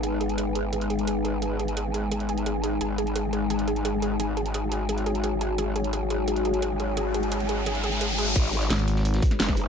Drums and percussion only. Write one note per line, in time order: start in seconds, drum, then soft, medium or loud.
0.03 closed hi-hat medium
0.21 closed hi-hat medium
0.29 closed hi-hat soft
0.38 closed hi-hat medium
0.55 closed hi-hat medium
0.73 closed hi-hat medium
0.81 closed hi-hat soft
0.90 closed hi-hat medium
0.99 closed hi-hat soft
1.07 closed hi-hat medium
1.25 closed hi-hat medium
1.42 closed hi-hat medium
1.59 closed hi-hat medium
1.68 closed hi-hat soft
1.77 closed hi-hat medium
1.94 closed hi-hat medium
2.12 closed hi-hat medium
2.20 closed hi-hat soft
2.29 closed hi-hat medium
2.38 closed hi-hat soft
2.46 closed hi-hat medium
2.64 closed hi-hat medium
2.81 closed hi-hat medium
2.98 closed hi-hat medium
3.07 closed hi-hat soft
3.16 closed hi-hat medium
3.33 closed hi-hat medium
3.50 closed hi-hat medium
3.59 closed hi-hat soft
3.68 closed hi-hat medium
3.76 closed hi-hat soft
3.85 closed hi-hat medium
4.02 closed hi-hat medium
4.20 closed hi-hat medium
4.37 closed hi-hat medium
4.46 closed hi-hat soft
4.54 closed hi-hat medium
4.72 closed hi-hat medium
4.89 closed hi-hat medium
4.98 closed hi-hat soft
5.06 closed hi-hat medium
5.15 closed hi-hat soft
5.24 closed hi-hat medium
5.41 closed hi-hat medium
5.58 closed hi-hat medium
5.76 closed hi-hat medium
5.84 closed hi-hat soft
5.93 closed hi-hat medium
6.10 closed hi-hat medium
6.28 closed hi-hat medium
6.36 closed hi-hat soft
6.45 closed hi-hat medium
6.54 closed hi-hat soft
6.62 closed hi-hat medium
6.80 closed hi-hat medium
6.97 closed hi-hat medium
7.14 closed hi-hat medium
7.23 closed hi-hat soft
7.32 closed hi-hat medium
7.40 closed hi-hat soft
7.49 closed hi-hat medium
7.66 closed hi-hat loud
7.75 closed hi-hat soft
7.84 closed hi-hat medium
7.92 closed hi-hat soft
8.01 closed hi-hat loud
8.18 closed hi-hat medium
8.36 kick loud
8.36 closed hi-hat loud
8.36 closed hi-hat medium
8.36 crash loud
8.53 closed hi-hat medium
8.62 snare soft
8.62 closed hi-hat soft
8.70 snare loud
8.70 closed hi-hat loud
8.70 closed hi-hat medium
8.79 closed hi-hat soft
8.88 closed hi-hat medium
8.96 snare medium
9.05 closed hi-hat loud
9.05 closed hi-hat medium
9.14 snare medium
9.14 closed hi-hat soft
9.22 kick loud
9.22 closed hi-hat medium
9.31 snare soft
9.31 closed hi-hat soft
9.39 snare loud
9.39 closed hi-hat loud
9.39 open hi-hat medium
9.48 kick medium
9.48 snare soft
9.48 snare medium
9.56 closed hi-hat medium